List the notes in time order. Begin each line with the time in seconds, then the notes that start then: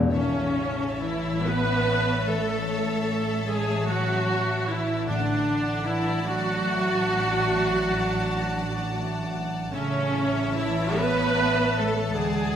Already playing: G#3 B3 D4 E4 G#4 B4 E5 G#5
0.03 E2
0.11 A1 A2 C#3 C#4 C#5 E5 A5
0.55 C#4
1.00 E3 E4
1.43 B3 C#4 B4
1.86 A3
2.25 E3 A3 A4
2.67 A3
3.07 C#4
3.45 E3 G#3 G#4
3.86 F#3 C#4 F#4
4.28 A3
4.68 E3 E4
5.08 A1 A2 D3 D4 D5 F#5 A5
5.47 D4
5.85 E3 F#3 E4
6.24 F#3 D4 F#4
6.63 A3
7.01 F#3
7.39 A3
7.78 D4
8.16 F#3
8.56 D4
8.95 A3
9.33 F#3
9.71 A1 A2 C#3 C#4 C#5 E5 A5
10.14 E4
10.55 E3 E4
10.98 B3 E4 B4
11.39 A3
11.76 E3 A3 A4
12.14 D2 D3 G#3 G#4 D5 F#5